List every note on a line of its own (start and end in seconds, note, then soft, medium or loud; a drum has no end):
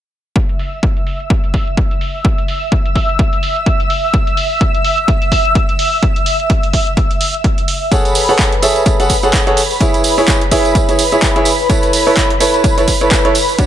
0.36 7.93 E5 medium
0.36 7.93 E6 medium
0.36 kick loud
0.36 closed hi-hat medium
0.49 closed hi-hat soft
0.59 open hi-hat medium
0.83 kick loud
0.83 closed hi-hat medium
0.97 closed hi-hat medium
1.07 open hi-hat medium
1.20 closed hi-hat soft
1.30 kick loud
1.30 closed hi-hat medium
1.44 closed hi-hat soft
1.54 kick medium
1.54 open hi-hat loud
1.67 closed hi-hat soft
1.77 kick loud
1.77 closed hi-hat medium
1.91 closed hi-hat medium
2.01 open hi-hat medium
2.25 kick loud
2.25 closed hi-hat medium
2.38 closed hi-hat soft
2.48 open hi-hat loud
2.72 kick loud
2.72 closed hi-hat medium
2.86 closed hi-hat medium
2.96 kick medium
2.96 open hi-hat medium
3.09 closed hi-hat soft
3.19 kick loud
3.19 closed hi-hat medium
3.33 closed hi-hat soft
3.43 open hi-hat loud
3.56 closed hi-hat soft
3.66 kick loud
3.66 closed hi-hat medium
3.80 closed hi-hat soft
3.90 open hi-hat medium
4.14 kick loud
4.14 closed hi-hat medium
4.27 closed hi-hat soft
4.37 open hi-hat medium
4.61 kick loud
4.61 closed hi-hat medium
4.74 closed hi-hat soft
4.84 open hi-hat medium
4.98 closed hi-hat soft
5.08 kick loud
5.08 closed hi-hat medium
5.22 closed hi-hat soft
5.32 kick medium
5.32 open hi-hat loud
5.45 closed hi-hat soft
5.55 kick loud
5.55 closed hi-hat medium
5.69 closed hi-hat soft
5.79 open hi-hat medium
6.03 kick loud
6.03 closed hi-hat medium
6.16 closed hi-hat soft
6.26 open hi-hat loud
6.40 closed hi-hat soft
6.50 kick loud
6.50 closed hi-hat medium
6.63 closed hi-hat soft
6.73 kick medium
6.73 open hi-hat medium
6.87 closed hi-hat soft
6.97 kick loud
6.97 closed hi-hat medium
7.11 closed hi-hat soft
7.21 open hi-hat loud
7.34 closed hi-hat soft
7.44 kick loud
7.44 closed hi-hat medium
7.58 closed hi-hat soft
7.68 open hi-hat medium
7.92 8.26 G#4 medium
7.92 8.26 A4 medium
7.92 13.66 B4 medium
7.92 8.26 C#5 medium
7.92 8.26 F#5 medium
7.92 13.66 B5 medium
7.92 kick loud
7.92 closed hi-hat medium
7.92 tambourine soft
8.05 closed hi-hat soft
8.05 tambourine soft
8.15 open hi-hat medium
8.15 tambourine medium
8.29 8.50 G#4 medium
8.29 8.50 A4 medium
8.29 8.50 C#5 medium
8.29 8.50 F#5 medium
8.29 tambourine soft
8.39 kick loud
8.39 clap loud
8.39 closed hi-hat medium
8.39 tambourine soft
8.52 closed hi-hat soft
8.62 8.96 G#4 medium
8.62 8.96 A4 medium
8.62 8.96 C#5 medium
8.62 8.96 E5 medium
8.62 open hi-hat medium
8.62 tambourine medium
8.76 closed hi-hat soft
8.76 tambourine soft
8.86 kick loud
8.86 closed hi-hat medium
8.86 tambourine soft
9.00 9.12 G#4 medium
9.00 9.12 A4 medium
9.00 9.12 C#5 medium
9.00 9.12 F#5 medium
9.00 closed hi-hat soft
9.00 tambourine soft
9.10 kick medium
9.10 open hi-hat loud
9.10 tambourine medium
9.23 9.44 G#4 medium
9.23 9.44 A4 medium
9.23 9.44 C#5 medium
9.23 9.44 F#5 medium
9.23 closed hi-hat soft
9.23 tambourine soft
9.33 kick loud
9.33 clap loud
9.33 closed hi-hat medium
9.33 tambourine medium
9.47 9.59 G#4 medium
9.47 9.59 A4 medium
9.47 9.59 C#5 medium
9.47 9.59 F#5 medium
9.47 closed hi-hat soft
9.57 open hi-hat medium
9.57 tambourine medium
9.70 tambourine soft
9.81 10.15 E4 medium
9.81 10.15 G#4 medium
9.81 10.15 C#5 medium
9.81 10.15 E5 medium
9.81 kick loud
9.81 closed hi-hat medium
9.81 tambourine soft
9.94 closed hi-hat medium
9.94 tambourine soft
10.04 open hi-hat medium
10.04 tambourine medium
10.18 10.39 E4 medium
10.18 10.39 G#4 medium
10.18 10.39 C#5 medium
10.18 10.39 E5 medium
10.18 tambourine soft
10.27 kick loud
10.27 clap loud
10.27 closed hi-hat medium
10.27 tambourine soft
10.41 closed hi-hat soft
10.51 10.85 E4 medium
10.51 10.85 G#4 medium
10.51 10.85 C#5 medium
10.51 10.85 E5 medium
10.51 kick medium
10.51 open hi-hat medium
10.51 tambourine medium
10.65 closed hi-hat soft
10.65 tambourine soft
10.75 kick loud
10.75 closed hi-hat medium
10.75 tambourine medium
10.89 11.01 E4 medium
10.89 11.01 G#4 medium
10.89 11.01 C#5 medium
10.89 11.01 E5 medium
10.89 closed hi-hat soft
10.89 tambourine soft
10.99 open hi-hat medium
10.99 tambourine medium
11.12 11.33 E4 medium
11.12 11.33 G#4 medium
11.12 11.33 C#5 medium
11.12 11.33 E5 medium
11.12 closed hi-hat soft
11.12 tambourine soft
11.22 kick loud
11.22 clap loud
11.22 closed hi-hat medium
11.22 tambourine soft
11.36 11.48 E4 medium
11.36 11.48 G#4 medium
11.36 11.48 C#5 medium
11.36 11.48 E5 medium
11.36 closed hi-hat soft
11.45 open hi-hat medium
11.45 tambourine medium
11.59 tambourine soft
11.70 12.04 E4 medium
11.70 12.04 A4 medium
11.70 12.04 B4 medium
11.70 12.04 C#5 medium
11.70 kick loud
11.70 closed hi-hat medium
11.70 tambourine soft
11.83 closed hi-hat soft
11.83 tambourine soft
11.93 open hi-hat medium
11.93 tambourine medium
12.07 12.28 E4 medium
12.07 12.28 A4 medium
12.07 12.28 B4 medium
12.07 12.28 C#5 medium
12.07 tambourine soft
12.17 kick loud
12.17 clap loud
12.17 closed hi-hat medium
12.17 tambourine medium
12.30 closed hi-hat medium
12.40 12.74 E4 medium
12.40 12.74 A4 medium
12.40 12.74 B4 medium
12.40 12.74 C#5 medium
12.40 open hi-hat medium
12.40 tambourine medium
12.54 closed hi-hat soft
12.54 tambourine soft
12.64 kick loud
12.64 closed hi-hat medium
12.64 tambourine soft
12.78 12.90 E4 medium
12.78 12.90 A4 medium
12.78 12.90 B4 medium
12.78 12.90 C#5 medium
12.78 closed hi-hat medium
12.78 tambourine soft
12.88 kick medium
12.88 open hi-hat medium
12.88 tambourine medium
13.01 13.22 E4 medium
13.01 13.22 A4 medium
13.01 13.22 B4 medium
13.01 13.22 C#5 medium
13.01 closed hi-hat soft
13.01 tambourine soft
13.11 kick loud
13.11 clap loud
13.11 closed hi-hat medium
13.11 tambourine soft
13.25 13.34 E4 medium
13.25 13.34 A4 medium
13.25 13.34 B4 medium
13.25 13.34 C#5 medium
13.25 closed hi-hat soft
13.35 open hi-hat medium
13.35 tambourine medium
13.49 tambourine soft
13.58 13.66 D4 medium
13.58 13.66 F#4 medium
13.58 13.66 B4 medium
13.58 13.66 C#5 medium
13.58 kick loud
13.58 closed hi-hat medium
13.58 tambourine soft
13.58 noise sweep medium